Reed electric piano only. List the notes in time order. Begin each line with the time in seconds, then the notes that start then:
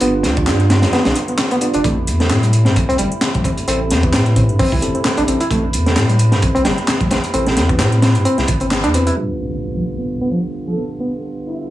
0.01 B3
0.70 B3
0.93 B3
1.06 D4
1.28 B3
1.51 B3
1.62 B3
1.74 D4
1.85 A3
2.43 G3
2.66 C4
2.89 C4
2.99 G3
3.34 G3
3.45 C4
3.68 C4
4.36 C4
4.59 C4
4.72 E4
4.95 C4
5.18 D4
5.28 C4
5.41 E4
5.51 A3
6.09 G3
6.32 C4
6.55 C4
6.65 G3
7.01 G3
7.11 C4
7.34 C4
8.02 C4
8.25 C4
8.38 E4
8.61 C4
8.84 D4
8.94 C4
9.07 E4
9.17 G3
9.75 F3
9.98 B3
10.21 B3
10.31 F3
10.67 F3
10.78 B3
11.00 B3